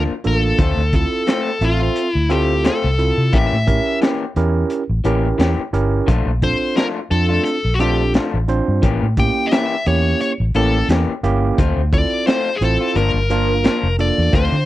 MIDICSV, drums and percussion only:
0, 0, Header, 1, 2, 480
1, 0, Start_track
1, 0, Key_signature, -1, "minor"
1, 0, Tempo, 687285
1, 412, Time_signature, 4, 2, 24, 8
1, 10234, End_track
2, 0, Start_track
2, 0, Title_t, "Drums"
2, 169, Note_on_c, 9, 42, 53
2, 239, Note_off_c, 9, 42, 0
2, 407, Note_on_c, 9, 42, 75
2, 410, Note_on_c, 9, 36, 93
2, 477, Note_off_c, 9, 42, 0
2, 480, Note_off_c, 9, 36, 0
2, 647, Note_on_c, 9, 42, 56
2, 649, Note_on_c, 9, 36, 77
2, 717, Note_off_c, 9, 42, 0
2, 719, Note_off_c, 9, 36, 0
2, 888, Note_on_c, 9, 42, 83
2, 897, Note_on_c, 9, 38, 113
2, 957, Note_off_c, 9, 42, 0
2, 967, Note_off_c, 9, 38, 0
2, 1127, Note_on_c, 9, 42, 60
2, 1197, Note_off_c, 9, 42, 0
2, 1367, Note_on_c, 9, 42, 71
2, 1437, Note_off_c, 9, 42, 0
2, 1606, Note_on_c, 9, 42, 58
2, 1676, Note_off_c, 9, 42, 0
2, 1847, Note_on_c, 9, 42, 86
2, 1857, Note_on_c, 9, 38, 106
2, 1917, Note_off_c, 9, 42, 0
2, 1927, Note_off_c, 9, 38, 0
2, 2089, Note_on_c, 9, 42, 52
2, 2159, Note_off_c, 9, 42, 0
2, 2324, Note_on_c, 9, 42, 76
2, 2327, Note_on_c, 9, 36, 109
2, 2394, Note_off_c, 9, 42, 0
2, 2397, Note_off_c, 9, 36, 0
2, 2568, Note_on_c, 9, 36, 86
2, 2570, Note_on_c, 9, 42, 61
2, 2638, Note_off_c, 9, 36, 0
2, 2640, Note_off_c, 9, 42, 0
2, 2805, Note_on_c, 9, 42, 78
2, 2815, Note_on_c, 9, 38, 109
2, 2875, Note_off_c, 9, 42, 0
2, 2885, Note_off_c, 9, 38, 0
2, 3046, Note_on_c, 9, 42, 65
2, 3116, Note_off_c, 9, 42, 0
2, 3282, Note_on_c, 9, 42, 83
2, 3352, Note_off_c, 9, 42, 0
2, 3523, Note_on_c, 9, 42, 57
2, 3593, Note_off_c, 9, 42, 0
2, 3768, Note_on_c, 9, 42, 82
2, 3778, Note_on_c, 9, 38, 114
2, 3838, Note_off_c, 9, 42, 0
2, 3848, Note_off_c, 9, 38, 0
2, 4007, Note_on_c, 9, 42, 60
2, 4077, Note_off_c, 9, 42, 0
2, 4246, Note_on_c, 9, 36, 107
2, 4247, Note_on_c, 9, 42, 81
2, 4316, Note_off_c, 9, 36, 0
2, 4317, Note_off_c, 9, 42, 0
2, 4486, Note_on_c, 9, 36, 84
2, 4486, Note_on_c, 9, 42, 52
2, 4556, Note_off_c, 9, 36, 0
2, 4556, Note_off_c, 9, 42, 0
2, 4724, Note_on_c, 9, 42, 73
2, 4733, Note_on_c, 9, 38, 105
2, 4794, Note_off_c, 9, 42, 0
2, 4803, Note_off_c, 9, 38, 0
2, 4967, Note_on_c, 9, 42, 54
2, 5037, Note_off_c, 9, 42, 0
2, 5204, Note_on_c, 9, 42, 77
2, 5274, Note_off_c, 9, 42, 0
2, 5445, Note_on_c, 9, 42, 54
2, 5515, Note_off_c, 9, 42, 0
2, 5684, Note_on_c, 9, 42, 70
2, 5694, Note_on_c, 9, 38, 101
2, 5754, Note_off_c, 9, 42, 0
2, 5763, Note_off_c, 9, 38, 0
2, 5926, Note_on_c, 9, 42, 53
2, 5995, Note_off_c, 9, 42, 0
2, 6165, Note_on_c, 9, 42, 75
2, 6167, Note_on_c, 9, 36, 109
2, 6235, Note_off_c, 9, 42, 0
2, 6236, Note_off_c, 9, 36, 0
2, 6405, Note_on_c, 9, 42, 58
2, 6406, Note_on_c, 9, 36, 78
2, 6474, Note_off_c, 9, 42, 0
2, 6476, Note_off_c, 9, 36, 0
2, 6643, Note_on_c, 9, 42, 84
2, 6653, Note_on_c, 9, 38, 113
2, 6713, Note_off_c, 9, 42, 0
2, 6723, Note_off_c, 9, 38, 0
2, 6887, Note_on_c, 9, 42, 65
2, 6956, Note_off_c, 9, 42, 0
2, 7129, Note_on_c, 9, 42, 84
2, 7198, Note_off_c, 9, 42, 0
2, 7364, Note_on_c, 9, 42, 56
2, 7434, Note_off_c, 9, 42, 0
2, 7606, Note_on_c, 9, 42, 88
2, 7616, Note_on_c, 9, 38, 107
2, 7676, Note_off_c, 9, 42, 0
2, 7686, Note_off_c, 9, 38, 0
2, 7849, Note_on_c, 9, 42, 63
2, 7919, Note_off_c, 9, 42, 0
2, 8089, Note_on_c, 9, 42, 82
2, 8090, Note_on_c, 9, 36, 100
2, 8159, Note_off_c, 9, 42, 0
2, 8160, Note_off_c, 9, 36, 0
2, 8329, Note_on_c, 9, 36, 81
2, 8330, Note_on_c, 9, 42, 61
2, 8399, Note_off_c, 9, 36, 0
2, 8400, Note_off_c, 9, 42, 0
2, 8569, Note_on_c, 9, 42, 84
2, 8578, Note_on_c, 9, 38, 117
2, 8638, Note_off_c, 9, 42, 0
2, 8648, Note_off_c, 9, 38, 0
2, 8811, Note_on_c, 9, 42, 68
2, 8881, Note_off_c, 9, 42, 0
2, 9046, Note_on_c, 9, 42, 72
2, 9116, Note_off_c, 9, 42, 0
2, 9288, Note_on_c, 9, 42, 53
2, 9358, Note_off_c, 9, 42, 0
2, 9528, Note_on_c, 9, 42, 76
2, 9537, Note_on_c, 9, 38, 101
2, 9597, Note_off_c, 9, 42, 0
2, 9607, Note_off_c, 9, 38, 0
2, 9770, Note_on_c, 9, 42, 53
2, 9840, Note_off_c, 9, 42, 0
2, 10008, Note_on_c, 9, 42, 71
2, 10009, Note_on_c, 9, 36, 94
2, 10078, Note_off_c, 9, 42, 0
2, 10079, Note_off_c, 9, 36, 0
2, 10234, End_track
0, 0, End_of_file